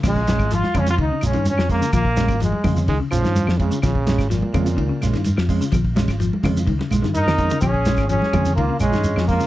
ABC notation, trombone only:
X:1
M:4/4
L:1/16
Q:1/4=127
K:Bbdor
V:1 name="Trombone"
A,4 F2 D F E2 D2 D2 B,2 | B,4 A,4 z8 | z16 | z12 E4 |
D4 D4 B,2 A,4 B,2 |]